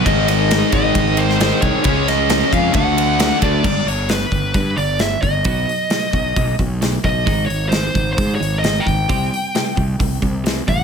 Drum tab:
CC |----------------|----------------|x---------------|----------------|
RD |x-x-x-x-x-x-x-x-|x-x-x-x-x-x-x-x-|----------------|----------------|
HH |----------------|----------------|--o-o-o-o-o-o-o-|o-o-o-o-o-o-o-o-|
SD |--o-o------oo---|--o-o-------o---|----o-------o---|----o-------o---|
BD |o-----o-o-----o-|o-----o-o-----o-|o-----o-o-----o-|o-----o-o-o---o-|

CC |----------------|----------------|
RD |----------------|----------------|
HH |o-o-o-o-o-o-o-o-|o-o-o-o-o-o-o-o-|
SD |----o-------o---|----o-------o---|
BD |o-----o-o-----o-|o-----o-o-o---o-|